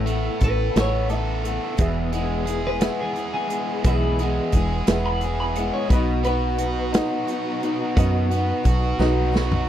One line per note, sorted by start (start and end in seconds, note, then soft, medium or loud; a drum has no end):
0.00 0.28 A1 medium
0.00 1.44 A2 medium
0.00 1.75 B3 medium
0.00 1.75 E4 medium
0.00 1.75 A4 medium
0.06 1.43 A3 medium
0.06 0.42 A4 medium
0.06 closed hi-hat medium
0.10 0.41 A3 medium
0.10 0.42 B3 medium
0.40 0.69 A1 medium
0.40 0.75 E3 medium
0.40 0.75 A3 medium
0.40 0.75 B3 medium
0.40 1.09 A4 medium
0.40 kick medium
0.40 closed hi-hat medium
0.44 0.75 A4 medium
0.44 0.76 B4 medium
0.76 1.58 A1 medium
0.76 1.11 A2 medium
0.76 1.08 E3 medium
0.76 1.09 A3 medium
0.76 1.09 B3 medium
0.76 1.09 A4 medium
0.76 snare loud
0.76 closed hi-hat medium
0.80 1.13 C#5 medium
1.09 1.44 E3 medium
1.09 1.44 A3 medium
1.09 1.44 B3 medium
1.09 1.43 A4 medium
1.09 2.61 E5 medium
1.09 closed hi-hat medium
1.44 1.78 A3 soft
1.44 1.78 B3 soft
1.44 1.78 A4 soft
1.44 closed hi-hat medium
1.77 2.88 E1 loud
1.77 2.12 E2 medium
1.77 2.12 B2 medium
1.77 2.12 E3 medium
1.77 2.13 G#3 medium
1.77 5.86 B3 medium
1.77 2.13 B3 medium
1.77 5.86 E4 medium
1.77 2.73 G#4 medium
1.77 2.11 G#4 medium
1.77 5.86 G#4 medium
1.77 2.73 B4 medium
1.77 2.73 E5 medium
1.77 kick loud
1.77 closed hi-hat medium
2.13 2.46 E3 soft
2.13 2.47 G#3 medium
2.13 2.48 B3 soft
2.13 2.47 G#4 medium
2.13 closed hi-hat medium
2.46 2.82 E3 medium
2.46 2.82 G#3 medium
2.46 3.12 G#4 medium
2.46 closed hi-hat medium
2.50 2.81 B3 medium
2.50 2.81 G#4 medium
2.67 2.99 B4 medium
2.81 3.17 E2 soft
2.81 3.17 B2 medium
2.81 3.16 E3 medium
2.81 3.16 G#3 medium
2.81 3.16 B3 medium
2.81 3.75 G#4 medium
2.81 3.16 G#4 medium
2.81 3.75 B4 medium
2.81 3.76 E5 medium
2.81 snare loud
2.81 closed hi-hat medium
3.01 3.33 G#4 medium
3.13 3.51 E3 medium
3.13 4.52 G#4 medium
3.13 closed hi-hat medium
3.18 3.51 G#3 medium
3.18 3.50 B3 medium
3.18 3.49 G#4 medium
3.34 3.83 G#4 medium
3.47 4.18 G#3 medium
3.47 3.85 B3 soft
3.47 3.84 G#4 soft
3.47 closed hi-hat medium
3.52 3.85 E3 soft
3.52 3.84 G#3 soft
3.84 4.39 B1 medium
3.84 4.19 E2 medium
3.84 4.19 B2 medium
3.84 4.19 E3 medium
3.84 4.19 G#3 medium
3.84 4.19 B3 medium
3.84 4.18 E4 medium
3.84 4.78 G#4 medium
3.84 4.19 G#4 medium
3.84 4.78 B4 medium
3.84 4.78 E5 medium
3.84 kick loud
3.84 closed hi-hat medium
4.19 4.53 E3 soft
4.19 4.54 G#3 soft
4.19 4.54 B3 soft
4.19 4.54 G#4 medium
4.19 closed hi-hat medium
4.52 4.81 E1 medium
4.52 4.88 E3 medium
4.52 4.88 G#3 medium
4.52 4.89 B3 medium
4.52 kick medium
4.52 closed hi-hat medium
4.56 4.89 G#4 medium
4.87 5.70 E1 medium
4.87 6.23 B3 medium
4.87 5.81 G#4 medium
4.87 5.23 G#4 medium
4.87 5.81 B4 medium
4.87 5.82 E5 medium
4.87 snare loud
4.87 closed hi-hat loud
4.91 5.24 E2 medium
4.91 5.24 B2 medium
4.91 5.21 E3 medium
4.91 5.22 G#3 medium
4.91 5.23 B3 medium
5.06 5.23 B5 medium
5.21 5.56 E3 medium
5.21 5.57 G#3 medium
5.21 5.57 B3 medium
5.21 5.90 G#4 medium
5.21 5.39 G#5 medium
5.21 closed hi-hat medium
5.25 5.56 G#4 medium
5.40 5.56 B5 medium
5.55 5.92 E3 soft
5.55 5.91 G#3 soft
5.55 5.91 B3 medium
5.55 5.90 G#4 soft
5.55 5.73 F#5 loud
5.55 closed hi-hat medium
5.73 5.90 C#5 medium
5.88 7.00 B1 loud
5.88 6.25 B2 medium
5.88 9.69 B3 medium
5.88 9.69 D#4 medium
5.88 9.69 F#4 medium
5.88 6.23 B4 medium
5.88 6.85 B4 medium
5.88 kick loud
5.88 closed hi-hat medium
5.92 6.26 F#3 medium
5.92 6.26 B3 medium
5.92 6.26 D#4 medium
5.92 6.85 F#4 medium
5.92 6.25 F#4 medium
5.92 6.85 D#5 medium
6.23 7.62 B3 medium
6.23 6.60 D#4 soft
6.23 6.59 F#4 medium
6.23 7.58 B4 loud
6.23 closed hi-hat medium
6.28 6.60 B3 soft
6.58 6.94 F#3 medium
6.58 6.93 B3 medium
6.58 6.93 D#4 medium
6.58 closed hi-hat medium
6.62 6.92 F#4 medium
6.93 7.29 B2 medium
6.93 7.26 F#3 medium
6.93 7.28 B3 medium
6.93 7.28 D#4 medium
6.93 7.27 F#4 medium
6.93 7.87 F#4 medium
6.93 7.87 B4 medium
6.93 7.88 D#5 medium
6.93 snare loud
6.93 closed hi-hat medium
7.27 7.61 F#3 medium
7.27 7.62 B3 medium
7.27 7.62 D#4 medium
7.27 7.61 F#4 medium
7.27 closed hi-hat medium
7.62 7.97 B3 soft
7.62 7.97 D#4 medium
7.62 7.96 F#4 medium
7.62 closed hi-hat medium
7.97 8.52 F#2 medium
7.97 8.31 B2 medium
7.97 8.31 F#3 medium
7.97 8.32 B3 medium
7.97 8.32 D#4 medium
7.97 8.90 F#4 medium
7.97 8.30 F#4 medium
7.97 8.90 B4 medium
7.97 8.91 D#5 medium
7.97 9.64 F#5 loud
7.97 kick loud
7.97 closed hi-hat medium
8.31 8.64 B3 soft
8.31 8.65 D#4 soft
8.31 8.65 F#4 soft
8.31 closed hi-hat medium
8.64 8.92 B1 medium
8.64 8.99 F#3 medium
8.64 8.99 B3 medium
8.64 8.99 D#4 medium
8.64 8.98 F#4 medium
8.64 kick medium
8.64 closed hi-hat medium
8.99 9.69 B1 loud
8.99 9.34 B2 medium
8.99 9.31 F#3 medium
8.99 9.32 B3 medium
8.99 9.33 D#4 medium
8.99 9.33 F#4 medium
8.99 9.69 F#4 medium
8.99 9.69 B4 medium
8.99 9.69 D#5 medium
8.99 snare medium
9.32 9.67 F#3 medium
9.32 9.68 B3 medium
9.32 9.67 D#4 medium
9.32 9.66 F#4 medium
9.32 snare medium
9.51 mid tom medium